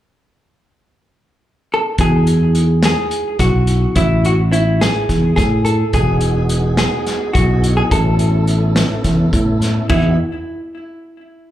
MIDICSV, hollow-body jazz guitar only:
0, 0, Header, 1, 2, 480
1, 0, Start_track
1, 0, Key_signature, 4, "major"
1, 0, Tempo, 564972
1, 23, Time_signature, 7, 3, 24, 8
1, 9781, End_track
2, 0, Start_track
2, 0, Title_t, "Hollow-body jazz guitar"
2, 0, Program_c, 0, 26
2, 1476, Note_on_c, 0, 69, 84
2, 1537, Note_off_c, 0, 69, 0
2, 1705, Note_on_c, 0, 68, 86
2, 2415, Note_off_c, 0, 68, 0
2, 2425, Note_on_c, 0, 68, 86
2, 2884, Note_off_c, 0, 68, 0
2, 2887, Note_on_c, 0, 66, 81
2, 3369, Note_on_c, 0, 64, 81
2, 3382, Note_off_c, 0, 66, 0
2, 3615, Note_off_c, 0, 64, 0
2, 3617, Note_on_c, 0, 66, 81
2, 3680, Note_off_c, 0, 66, 0
2, 3843, Note_on_c, 0, 64, 75
2, 4089, Note_on_c, 0, 68, 88
2, 4093, Note_off_c, 0, 64, 0
2, 4545, Note_off_c, 0, 68, 0
2, 4556, Note_on_c, 0, 68, 83
2, 4794, Note_off_c, 0, 68, 0
2, 4798, Note_on_c, 0, 69, 81
2, 5026, Note_off_c, 0, 69, 0
2, 5049, Note_on_c, 0, 68, 83
2, 5736, Note_off_c, 0, 68, 0
2, 5764, Note_on_c, 0, 68, 81
2, 6228, Note_off_c, 0, 68, 0
2, 6231, Note_on_c, 0, 66, 73
2, 6597, Note_off_c, 0, 66, 0
2, 6600, Note_on_c, 0, 68, 73
2, 6643, Note_off_c, 0, 68, 0
2, 6728, Note_on_c, 0, 69, 78
2, 7900, Note_off_c, 0, 69, 0
2, 8408, Note_on_c, 0, 64, 73
2, 8636, Note_off_c, 0, 64, 0
2, 9781, End_track
0, 0, End_of_file